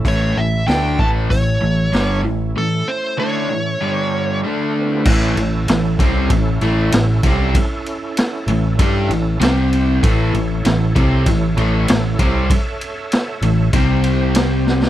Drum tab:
CC |----------------|----------------|x---------------|----------------|
RD |----------------|----------------|--x-x-x-x-x-x-x-|x-x-x-x-x-x-x-x-|
HH |o---o---o---o---|----------------|----------------|----------------|
SD |----o-------oo--|----------------|----o-------o---|----o-------o---|
BD |o-----o-o-------|----------------|o-----o-o-----o-|o-------o-------|

CC |----------------|----------------|
RD |x-x-x-x-x-x-x-x-|x-x-x-x-x-x-x---|
HH |----------------|----------------|
SD |----o-------o---|----o-------o-oo|
BD |o-----o-o-----o-|o-------o-------|